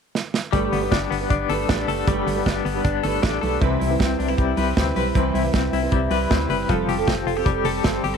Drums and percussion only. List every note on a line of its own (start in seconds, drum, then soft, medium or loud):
0.15 snare medium
0.34 snare medium
0.53 kick medium
0.53 closed hi-hat medium
0.73 open hi-hat medium
0.92 kick medium
0.92 snare medium
0.92 closed hi-hat medium
1.12 open hi-hat medium
1.30 kick medium
1.30 closed hi-hat medium
1.50 open hi-hat medium
1.69 kick loud
1.69 snare loud
1.69 closed hi-hat medium
1.88 open hi-hat medium
2.07 kick loud
2.07 closed hi-hat medium
2.27 open hi-hat medium
2.46 kick medium
2.46 snare medium
2.46 closed hi-hat medium
2.66 open hi-hat medium
2.85 kick medium
2.85 closed hi-hat medium
3.03 open hi-hat medium
3.23 kick loud
3.23 snare loud
3.43 open hi-hat medium
3.62 kick loud
3.62 closed hi-hat medium
3.81 open hi-hat medium
4.00 kick loud
4.00 snare medium
4.00 closed hi-hat medium
4.20 open hi-hat medium
4.38 kick medium
4.38 closed hi-hat medium
4.57 open hi-hat medium
4.77 kick loud
4.77 snare loud
4.77 closed hi-hat medium
4.96 open hi-hat medium
5.15 kick medium
5.15 closed hi-hat medium
5.35 open hi-hat medium
5.54 kick loud
5.54 snare loud
5.54 closed hi-hat medium
5.73 open hi-hat medium
5.92 kick loud
5.92 closed hi-hat medium
6.11 open hi-hat medium
6.31 kick loud
6.31 snare loud
6.31 closed hi-hat medium
6.50 open hi-hat medium
6.69 kick medium
6.69 closed hi-hat medium
6.89 open hi-hat medium
7.08 kick medium
7.08 snare medium
7.08 closed hi-hat medium
7.28 open hi-hat medium
7.46 kick loud
7.46 closed hi-hat medium
7.65 open hi-hat medium
7.84 kick loud
7.84 snare loud
7.84 closed hi-hat medium
8.04 open hi-hat medium